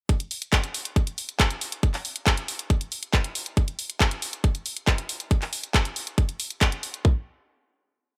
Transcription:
0.09 kick loud
0.09 closed hi-hat medium
0.20 closed hi-hat medium
0.31 open hi-hat loud
0.42 closed hi-hat medium
0.53 kick loud
0.53 clap loud
0.53 closed hi-hat medium
0.64 closed hi-hat medium
0.74 open hi-hat loud
0.85 closed hi-hat medium
0.96 kick loud
0.96 closed hi-hat medium
1.07 closed hi-hat medium
1.18 open hi-hat loud
1.29 closed hi-hat medium
1.40 kick loud
1.40 clap loud
1.40 closed hi-hat medium
1.50 closed hi-hat medium
1.61 open hi-hat loud
1.72 closed hi-hat medium
1.83 kick loud
1.83 closed hi-hat medium
1.94 clap soft
1.94 open hi-hat medium
2.05 open hi-hat loud
2.16 closed hi-hat medium
2.27 kick loud
2.27 clap loud
2.27 closed hi-hat medium
2.37 closed hi-hat medium
2.48 open hi-hat loud
2.59 closed hi-hat medium
2.70 kick loud
2.70 closed hi-hat medium
2.81 closed hi-hat medium
2.92 open hi-hat loud
3.03 closed hi-hat medium
3.14 kick loud
3.14 clap loud
3.14 closed hi-hat medium
3.24 closed hi-hat medium
3.35 open hi-hat loud
3.46 closed hi-hat medium
3.57 kick loud
3.57 closed hi-hat medium
3.68 closed hi-hat medium
3.79 open hi-hat loud
3.90 closed hi-hat medium
4.00 kick loud
4.00 clap loud
4.00 closed hi-hat medium
4.11 closed hi-hat medium
4.22 open hi-hat loud
4.33 closed hi-hat medium
4.44 kick loud
4.44 closed hi-hat medium
4.55 closed hi-hat medium
4.66 open hi-hat loud
4.77 closed hi-hat medium
4.87 kick loud
4.87 clap loud
4.87 closed hi-hat medium
4.98 closed hi-hat medium
5.09 open hi-hat loud
5.20 closed hi-hat medium
5.31 kick loud
5.31 closed hi-hat medium
5.42 clap soft
5.42 open hi-hat medium
5.53 open hi-hat loud
5.64 closed hi-hat medium
5.74 kick loud
5.74 clap loud
5.74 closed hi-hat medium
5.85 closed hi-hat medium
5.96 open hi-hat loud
6.07 closed hi-hat medium
6.18 kick loud
6.18 closed hi-hat medium
6.29 closed hi-hat medium
6.40 open hi-hat loud
6.50 closed hi-hat medium
6.61 kick loud
6.61 clap loud
6.61 closed hi-hat medium
6.72 closed hi-hat medium
6.83 open hi-hat loud
6.94 closed hi-hat medium
7.05 kick loud

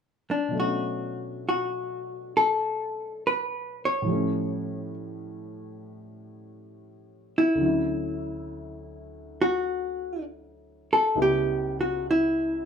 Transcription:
0.31 0.57 D4 medium
0.48 4.04 B2 soft
0.48 4.06 F#3 soft
0.53 4.07 A3 soft
0.53 4.08 C#4 soft
0.59 4.10 D4 soft
0.59 1.47 F#4 medium
1.49 2.36 F#4 medium
2.37 3.24 A4 medium
3.27 3.85 B4 medium
3.85 4.94 C#5 medium
4.02 7.57 A2 soft
4.02 7.58 F3 soft
4.08 7.60 G3 soft
4.08 7.61 A3 soft
4.13 7.62 C#4 medium
7.38 9.41 E4 medium
7.55 11.11 D2 soft
7.55 11.12 D3 soft
7.60 11.13 F#3 soft
7.60 11.15 C#4 soft
7.65 11.15 E4 soft
9.42 10.23 F#4 medium
10.93 11.17 A4 medium
11.15 12.65 C#2 medium
11.15 12.65 C#3 soft
11.15 12.65 G3 soft
11.15 12.65 B3 soft
11.15 12.65 E4 medium
11.22 11.80 G4 medium
11.81 12.06 F#4 medium
12.11 12.65 E4 medium

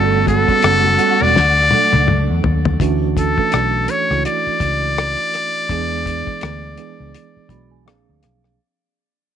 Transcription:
0.00 0.45 G1 medium
0.00 1.34 C#3 medium
0.00 0.44 G3 medium
0.00 1.32 A3 medium
0.00 0.44 B3 medium
0.00 1.34 B3 medium
0.00 0.44 C#4 medium
0.00 0.45 F#4 medium
0.00 2.77 F#4 medium
0.00 0.24 A4 medium
0.00 0.45 A4 loud
0.12 muted conga soft
0.27 1.24 A4 medium
0.27 kick medium
0.27 closed hi-hat medium
0.27 high conga medium
0.48 0.97 G3 medium
0.48 0.97 B3 medium
0.48 0.97 C#4 medium
0.48 0.97 F#4 medium
0.48 0.98 A4 medium
0.48 muted fingered electric bass stroke soft
0.48 kick medium
0.48 closed hi-hat soft
0.62 0.97 F#1 medium
0.62 cross-stick loud
0.62 closed hi-hat medium
0.62 muted conga soft
0.83 muted conga soft
0.83 high conga medium
0.99 1.36 G3 medium
0.99 1.36 B3 medium
0.99 1.36 C#4 medium
0.99 1.36 F#4 medium
0.99 1.36 A4 medium
0.99 closed hi-hat medium
1.21 1.35 E1 medium
1.21 2.45 D5 medium
1.21 high conga medium
1.35 1.69 D2 medium
1.35 2.79 A3 medium
1.35 2.78 D4 medium
1.35 snare soft
1.35 muted conga soft
1.35 low conga medium
1.71 2.74 F#3 medium
1.71 2.74 A3 medium
1.71 2.74 D4 medium
1.71 2.75 A4 medium
1.71 muted fingered electric bass stroke soft
1.71 high tom medium
1.71 high conga medium
1.93 2.26 C#2 medium
1.93 high tom medium
2.07 mid tom medium
2.07 muted conga soft
2.07 high conga medium
2.30 2.43 E2 medium
2.44 2.77 D#2 medium
2.44 floor tom medium
2.65 floor tom medium
2.65 low conga medium
2.80 3.34 D2 medium
2.80 3.33 E3 loud
2.80 3.33 A3 medium
2.80 3.33 C#4 medium
2.80 3.34 D4 loud
2.80 3.34 F#4 loud
2.80 kick loud
2.80 closed hi-hat medium
3.17 3.92 A4 medium
3.17 kick medium
3.17 closed hi-hat medium
3.38 4.04 E3 medium
3.38 4.04 A3 medium
3.38 4.04 C#4 medium
3.38 4.04 D4 medium
3.38 4.05 A4 medium
3.38 kick medium
3.52 3.86 B1 medium
3.52 cross-stick medium
3.52 closed hi-hat medium
3.88 4.26 C#5 medium
3.88 closed hi-hat medium
4.10 4.24 C#2 medium
4.10 5.42 E3 medium
4.10 5.42 A3 medium
4.10 5.43 D4 medium
4.10 5.43 E4 medium
4.10 5.43 F#4 medium
4.10 cross-stick soft
4.25 7.83 D5 loud
4.25 closed hi-hat medium
4.47 muted fingered electric bass stroke soft
4.60 5.14 C#2 medium
4.60 kick medium
4.60 closed hi-hat medium
4.98 cross-stick medium
4.98 closed hi-hat medium
5.34 cross-stick soft
5.34 closed hi-hat soft
5.69 6.23 E2 medium
5.69 6.72 E3 loud
5.69 6.72 G#3 medium
5.69 6.72 B3 medium
5.69 6.72 D4 medium
5.69 6.72 G#4 loud
5.69 kick loud
5.69 closed hi-hat medium
6.06 kick medium
6.06 closed hi-hat medium
6.27 muted fingered electric bass stroke soft
6.27 kick medium
6.41 6.75 D2 medium
6.41 cross-stick medium
6.41 closed hi-hat medium
6.78 7.46 E3 medium
6.78 7.46 G#3 medium
6.78 7.46 B3 medium
6.78 7.47 D4 medium
6.78 7.47 G#4 medium
6.78 closed hi-hat medium
7.00 7.13 C#2 medium
7.14 closed hi-hat medium
7.37 muted fingered electric bass stroke soft
7.49 7.88 B1 medium
7.49 7.86 E3 medium
7.49 7.86 G#3 medium
7.49 7.86 B3 medium
7.49 7.85 D4 medium
7.49 7.87 F#4 medium
7.49 7.70 B5 medium
7.49 kick medium
7.49 closed hi-hat medium
7.71 7.85 G#5 medium
7.85 8.06 A#1 medium
7.85 8.53 F3 medium
7.85 8.54 A#3 medium
7.85 8.54 C4 medium
7.85 8.54 D4 medium
7.85 8.54 G#4 medium
7.85 8.20 F5 medium
7.85 cross-stick medium
7.85 closed hi-hat medium
8.09 8.22 D2 medium
8.22 8.57 B1 medium
8.22 8.56 F5 medium
8.22 cross-stick soft
8.22 closed hi-hat medium
8.44 cross-stick soft

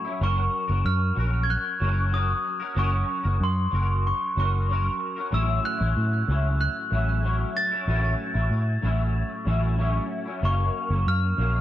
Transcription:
0.05 0.20 F#3 soft
0.05 0.21 C#4 medium
0.05 0.21 E4 medium
0.21 0.47 F#1 loud
0.21 0.69 F#3 medium
0.21 0.70 C#4 medium
0.21 0.68 F#4 medium
0.21 0.67 A#4 medium
0.21 0.88 C#6 loud
0.68 0.82 F#1 loud
0.68 1.17 F#4 medium
0.68 1.17 A#4 medium
0.72 1.15 C#4 medium
0.85 1.11 F#2 loud
0.85 1.39 F6 medium
1.15 1.56 A#1 medium
1.15 1.79 F#3 medium
1.15 1.81 C#4 medium
1.15 1.82 F#4 medium
1.20 1.82 A#4 medium
1.43 1.50 G#6 medium
1.50 2.10 F#6 loud
1.80 2.33 F#1 loud
1.80 2.11 F#3 medium
1.80 2.12 C#4 medium
1.80 2.13 F#4 medium
1.80 2.14 A#4 medium
2.12 2.60 F#3 medium
2.12 2.61 C#4 medium
2.12 2.60 F#4 medium
2.12 2.58 A#4 medium
2.12 2.79 D#6 medium
2.60 2.75 C#4 soft
2.60 2.76 F#4 soft
2.60 2.76 A#4 medium
2.75 3.02 F#1 loud
2.75 3.24 F#3 medium
2.75 3.25 C#4 loud
2.75 3.24 F#4 medium
2.75 3.22 A#4 medium
2.75 3.44 C#6 medium
3.23 3.38 F#1 loud
3.23 3.72 C#4 soft
3.23 3.73 F#4 medium
3.23 3.72 A#4 medium
3.40 3.66 F#2 loud
3.40 4.02 C6 medium
3.71 4.11 F#1 loud
3.71 4.36 F#3 medium
3.71 4.37 C#4 medium
3.71 4.38 F#4 medium
3.71 4.38 A#4 medium
4.07 4.38 C#6 medium
4.36 4.88 F#1 loud
4.36 4.67 F#3 medium
4.36 4.69 C#4 medium
4.36 4.70 F#4 medium
4.36 4.70 A#4 medium
4.36 4.98 C#6 medium
4.68 5.16 F#3 medium
4.68 5.17 C#4 medium
4.68 5.16 F#4 medium
4.73 5.15 A#4 medium
5.16 5.33 C#4 soft
5.16 5.33 F#4 medium
5.16 5.32 A#4 medium
5.31 5.58 A1 loud
5.31 5.80 A2 medium
5.31 5.80 F#3 medium
5.31 5.81 C#4 medium
5.31 5.78 E4 medium
5.31 5.48 E6 medium
5.65 6.59 F#6 medium
5.79 5.93 A1 loud
5.79 6.29 C#4 medium
5.79 6.28 E4 medium
5.83 6.28 F#3 soft
5.97 6.22 A2 loud
6.27 6.67 C#2 medium
6.27 6.89 A2 medium
6.27 6.92 F#3 medium
6.27 6.93 C#4 medium
6.27 6.93 E4 medium
6.61 7.59 F#6 medium
6.91 7.43 A1 medium
6.91 7.21 A2 medium
6.91 7.23 F#3 medium
6.91 7.25 C#4 medium
6.91 7.25 E4 medium
7.23 7.71 A2 medium
7.23 7.72 F#3 medium
7.23 7.72 C#4 medium
7.27 7.70 E4 medium
7.57 9.44 A6 loud
7.71 7.87 F#3 soft
7.71 7.88 C#4 medium
7.71 7.88 E4 medium
7.88 8.13 A1 loud
7.88 8.36 A2 medium
7.88 8.36 F#3 medium
7.88 8.35 C#4 medium
7.88 8.33 E4 medium
8.34 8.48 A1 loud
8.34 8.82 F#3 soft
8.34 8.83 C#4 medium
8.34 8.83 E4 medium
8.51 8.77 A2 medium
8.81 9.22 A1 medium
8.81 9.44 A2 medium
8.81 9.46 F#3 medium
8.81 9.47 C#4 medium
8.81 9.48 E4 medium
9.45 9.98 A1 loud
9.45 9.76 A2 medium
9.45 9.77 F#3 medium
9.45 9.79 C#4 medium
9.45 9.80 E4 medium
9.77 10.26 A2 medium
9.77 10.27 F#3 medium
9.77 10.26 C#4 medium
9.81 10.24 E4 medium
10.26 10.42 F#3 medium
10.26 10.43 C#4 medium
10.26 10.42 E4 soft
10.42 10.68 F#1 loud
10.42 10.91 F#2 medium
10.42 10.91 F#3 medium
10.42 10.91 A#3 medium
10.42 10.89 C#4 medium
10.42 11.10 C#6 medium
10.90 11.03 F#1 loud
10.90 11.38 F#3 soft
10.90 11.40 A#3 medium
10.90 11.38 C#4 medium
11.07 11.32 F#2 medium
11.07 11.61 F6 loud
11.37 11.61 A#1 medium
11.37 11.61 F#2 medium
11.37 11.61 F#3 medium
11.37 11.61 A#3 medium
11.41 11.61 C#4 medium

